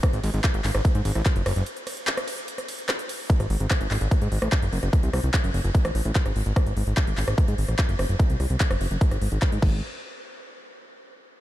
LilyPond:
<<
  \new Staff \with { instrumentName = "Analog synth bass" } { \clef bass \time 4/4 \tempo 4 = 147 r16 gis,,16 gis,,16 gis,,16 r16 gis,,16 gis,,16 gis,,16 r16 gis,16 gis,,16 a,,16 r16 fis,,16 fis,,16 fis,,16 | r1 | r16 gis,,16 gis,,16 gis,,16 r16 gis,,16 gis,,16 gis,,16 r16 gis,16 gis,,16 a,,16 r16 fis,,16 fis,,16 fis,,16 | r16 bis,,16 bis,,16 bis,,16 r16 fis,,16 fis,,16 fis,,16 r16 a,,16 a,,16 a,,16 r16 gis,,16 gis,,16 gis,,16 |
r16 gis,,16 gis,,16 gis,,16 r16 gis,,16 gis,,16 gis,,16 r16 gis,16 gis,,16 a,,16 r16 fis,,16 fis,,16 fis,,16 | r16 bis,,16 bis,,16 bis,,16 r16 fis,,16 fis,,16 fis,,16 r16 gis,,16 gis,,16 gis,,16 r16 gis,16 gis,,8 | r1 | }
  \new DrumStaff \with { instrumentName = "Drums" } \drummode { \time 4/4 <hh bd cymr ss>16 hh16 <hho cymr>16 hh16 <hc hh bd ss>16 hh16 <hc hho cymr>16 <hh ss>16 <hh bd cymr>16 hh16 <hho cymr>16 <hh ss>16 <hc hh bd cymr>16 hh16 <hho cymr ss>16 hh16 | <hh cymr>16 hh16 <hho cymr ss>16 hh16 <hc hh cymr>16 <hh ss>16 <hho cymr>16 hh16 <hh cymr>16 <hh ss>16 <hho cymr>16 hh16 <hc hh cymr ss>16 hh16 <hho cymr>16 hho16 | <hh bd>16 <hh ss>16 hho16 hh16 <hc hh bd ss>16 hh16 <hc hho>16 hh16 <hh bd ss>16 hh16 hho16 <hh ss>16 <hc hh bd>16 hh16 hho16 <hh ss>16 | <hh bd>16 hh16 <hho ss>16 hh16 <hc hh bd>16 hh16 hho16 hh16 <hh bd>16 <hh ss>16 hho16 hh16 <hc hh bd>16 <hh ss>16 hho16 hh16 |
<hh bd ss>16 hh16 hho16 hh16 <hc hh bd ss>16 hh16 <hc hho>16 <hh ss>16 <hh bd>16 hh16 hho16 <hh ss>16 <hc hh bd>16 hh16 <hho ss>16 hh16 | <hh bd>16 hh16 <hho ss>16 hh16 <hc hh bd>16 <hh ss>16 hho16 hh16 <hh bd>16 <hh ss>16 hho16 hh16 <hc hh bd ss>16 hh16 <cymc bd>8 | r4 r4 r4 r4 | }
>>